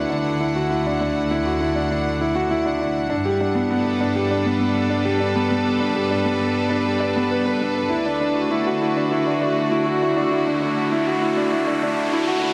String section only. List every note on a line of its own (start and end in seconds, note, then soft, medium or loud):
0.00 3.11 D3 medium
0.00 3.11 A3 medium
0.00 5.03 E4 medium
0.00 0.23 A4 medium
0.00 0.23 B4 medium
0.00 5.02 F#5 medium
3.10 7.91 G3 medium
3.33 9.59 D4 medium
3.79 9.75 A4 medium
3.79 9.83 B4 medium
7.90 12.53 D3 medium
8.14 12.53 E4 medium
8.20 12.53 A3 medium
8.35 12.53 F#4 medium